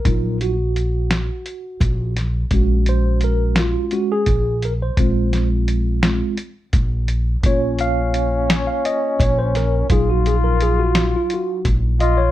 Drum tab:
HH |xxxxxxx|xxxxxxx|xxxxxxx|xxxxxxx|
SD |---o--o|---o---|-o-o---|---o--o|
BD |o----o-|o----o-|o----o-|o----o-|

HH |xxxxxxx|
SD |---o---|
BD |o----o-|